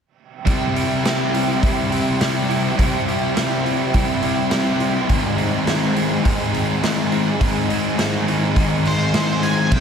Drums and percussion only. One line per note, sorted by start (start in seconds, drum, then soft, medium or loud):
0.47 kick medium
0.47 open hi-hat medium
0.76 open hi-hat soft
1.05 snare medium
1.05 open hi-hat medium
1.34 open hi-hat soft
1.63 kick loud
1.63 open hi-hat medium
1.92 open hi-hat soft
2.21 snare loud
2.21 open hi-hat medium
2.51 open hi-hat soft
2.79 kick loud
2.79 open hi-hat medium
3.09 open hi-hat soft
3.37 snare medium
3.37 open hi-hat medium
3.66 open hi-hat soft
3.94 kick loud
3.94 open hi-hat medium
4.22 open hi-hat soft
4.51 snare loud
4.51 open hi-hat medium
4.80 open hi-hat soft
5.09 kick loud
5.09 open hi-hat medium
5.38 open hi-hat soft
5.67 snare loud
5.67 open hi-hat medium
5.96 open hi-hat soft
6.25 kick loud
6.25 open hi-hat medium
6.55 open hi-hat soft
6.83 snare loud
6.83 open hi-hat medium
7.12 open hi-hat soft
7.41 kick medium
7.41 open hi-hat medium
7.70 open hi-hat soft
7.99 snare loud
7.99 open hi-hat medium
8.28 open hi-hat soft
8.56 kick loud
8.56 open hi-hat medium
8.85 open hi-hat soft
9.14 snare medium
9.14 open hi-hat medium
9.43 open hi-hat soft
9.72 kick loud
9.72 crash loud